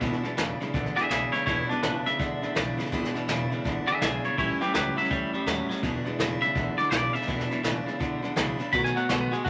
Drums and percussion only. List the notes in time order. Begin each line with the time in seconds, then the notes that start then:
0.01 kick, snare
0.13 snare
0.24 snare
0.38 snare, hi-hat pedal
0.61 snare
0.74 kick, snare
0.86 snare
0.97 snare
1.11 snare, hi-hat pedal
1.34 snare
1.47 kick, snare
1.70 snare
1.83 snare, hi-hat pedal
2.06 snare
2.20 kick, snare
2.43 snare
2.56 snare, hi-hat pedal
2.79 snare
2.86 snare
2.92 kick, snare
3.04 snare
3.15 snare
3.28 snare, hi-hat pedal
3.52 snare
3.65 kick, snare
3.88 snare
4.02 snare, hi-hat pedal
4.24 snare
4.38 kick, snare
4.61 snare
4.74 snare, hi-hat pedal
4.98 snare
5.04 snare
5.11 kick, snare
5.34 snare
5.47 snare, hi-hat pedal
5.70 snare
5.76 snare
5.83 kick, snare
6.06 snare
6.20 snare, hi-hat pedal
6.42 snare
6.55 kick, snare
6.78 snare
6.92 snare, hi-hat pedal
7.14 snare
7.22 snare
7.28 kick, snare
7.40 snare
7.51 snare
7.64 snare, hi-hat pedal
7.88 snare
8.01 kick, snare
8.24 snare
8.37 snare, hi-hat pedal
8.59 snare
8.73 kick, snare
8.85 snare
8.97 snare
9.09 snare, hi-hat pedal
9.33 snare
9.46 kick, snare